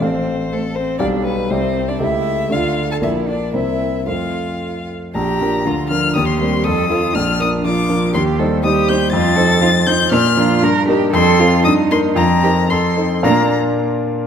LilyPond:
<<
  \new Staff \with { instrumentName = "Violin" } { \time 2/4 \key f \major \tempo 4 = 119 c''4 a'8 c''8 | d''8 b'8 c''8. d''16 | e''4 f''8. a''16 | e''8 d''8 e''4 |
f''4. r8 | \key bes \major bes''4. f'''8 | ees'''16 c'''16 c'''8 ees'''4 | f'''8 ees'''8 d'''4 |
c'''8 r8 ees'''8 g'''8 | a'''4. g'''8 | f'''4 r4 | c'''4 ees'''8 c'''8 |
bes''4 c'''4 | bes''8 r4. | }
  \new Staff \with { instrumentName = "Cello" } { \time 2/4 \key f \major c'4 a8 c'8 | d'8 b8 c'8. d'16 | e'4 f'8. a'16 | e'8 d'8 e'4 |
f'4. r8 | \key bes \major g'4 f'4 | g'4 a'8 f'8 | d'4 f'4 |
g'8 a'8 g'4 | f'8 a'8 f'8 ees'8 | d'8 f'8 bes'8 g'8 | a'8 f'8 ees'4 |
f'8 g'8 a'8 r8 | bes8 r4. | }
  \new Staff \with { instrumentName = "Grand piano" } { \time 2/4 \key f \major <a,, c' a' f''>2 | <b,, g g' f''>4 <c, g g' e''>4 | <cis, a g' e''>4 <d, a f' d''>4 | <bes,, bes f' d''>4 <c, bes c' c''>4 |
<f, a c' c''>2 | \key bes \major bes,,8 <f d' bes'>8 d,8 <f d' bes'>8 | ees,8 <g c' bes'>8 f,8 <f c' a'>8 | bes,,8 <f d' bes'>8 <f d' bes'>8 <f d' bes'>8 |
ees,8 <g ees' c''>8 <g ees' c''>8 <g ees' c''>8 | f,8 <f ees' c''>8 <f ees' c''>8 <f ees' c''>8 | bes,8 <f d' bes'>8 g,8 <bes ees' bes'>8 | f,8 <c' f' a'>8 g,8 <bes ees' bes'>8 |
f,8 <c' ees' bes'>8 f,8 <c' ees' a'>8 | <bes, bes d' f' bes' f''>8 r4. | }
>>